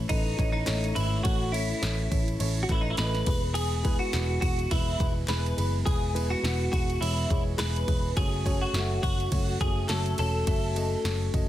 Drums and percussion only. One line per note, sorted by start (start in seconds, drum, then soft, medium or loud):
0.09 kick medium
0.09 ride medium
0.39 kick medium
0.39 ride medium
0.67 snare loud
0.67 clap loud
0.67 ride medium
0.84 ride soft
0.96 ride medium
1.25 kick loud
1.25 ride medium
1.54 ride medium
1.83 snare medium
1.83 clap medium
1.83 ride medium
2.12 kick medium
2.12 ride medium
2.28 ride soft
2.40 ride medium
2.69 kick medium
2.69 clap medium
2.69 ride medium
2.97 snare loud
2.97 clap loud
2.97 ride medium
3.14 snare soft
3.14 ride soft
3.26 kick loud
3.26 open hi-hat medium
3.26 ride medium
3.55 ride medium
3.85 kick medium
3.85 ride medium
4.13 snare medium
4.13 clap medium
4.13 ride medium
4.42 kick medium
4.42 ride medium
4.59 ride soft
4.71 kick medium
4.71 ride medium
5.00 kick loud
5.00 ride medium
5.28 snare medium
5.28 clap medium
5.28 ride medium
5.46 ride soft
5.58 ride medium
5.87 kick loud
5.87 ride medium
6.16 ride medium
6.45 snare loud
6.45 clap medium
6.45 ride medium
6.73 kick medium
6.73 ride medium
6.90 ride soft
7.02 ride medium
7.30 kick loud
7.30 ride medium
7.59 snare loud
7.59 clap loud
7.59 ride medium
7.76 ride soft
7.88 kick loud
7.88 ride medium
8.17 kick loud
8.17 ride medium
8.46 kick medium
8.46 ride medium
8.74 snare loud
8.74 clap medium
8.74 ride medium
9.03 kick medium
9.03 ride medium
9.20 ride soft
9.32 kick medium
9.32 ride medium
9.61 kick medium
9.61 ride medium
9.89 snare medium
9.89 clap medium
9.89 ride medium
10.06 ride soft
10.18 ride medium
10.47 kick loud
10.47 ride loud
10.76 ride medium
11.05 snare medium
11.05 clap loud
11.05 ride medium
11.34 kick medium
11.34 ride medium